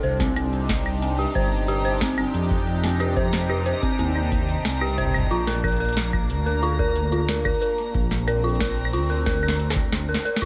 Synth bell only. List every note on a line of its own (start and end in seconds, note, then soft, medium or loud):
0.03 0.09 C5 medium
0.20 0.33 C4 medium
0.36 0.50 C4 medium
1.02 1.16 C4 medium
1.19 1.24 G4 loud
1.35 1.44 C5 loud
1.68 1.77 G4 loud
1.85 1.90 C5 medium
2.01 2.14 C4 medium
2.18 2.31 C4 medium
2.84 2.97 C4 medium
3.00 3.05 G4 loud
3.17 3.25 C5 loud
3.49 3.58 G4 loud
3.66 3.71 C5 medium
3.82 3.96 C4 medium
3.99 4.12 C4 medium
4.65 4.78 C4 medium
4.81 4.87 G4 loud
4.98 5.07 C5 loud
5.31 5.40 F4 loud
5.47 5.53 A#4 medium
5.64 5.77 A#4 medium
5.80 5.94 A#4 medium
6.46 6.60 A#4 medium
6.63 6.68 F4 loud
6.79 6.88 A#4 loud
7.12 7.21 F4 loud
7.29 7.34 A#4 medium
7.45 7.58 A#4 medium
7.62 7.75 A#4 medium
8.27 8.41 A#4 medium
8.44 8.49 F4 loud
8.60 8.69 A#4 loud
8.93 9.02 F4 loud
9.10 9.15 A#4 medium
9.26 9.40 A#4 medium
9.43 9.56 A#4 medium
10.09 10.22 A#4 medium
10.25 10.34 A#4 loud
10.42 10.45 F4 loud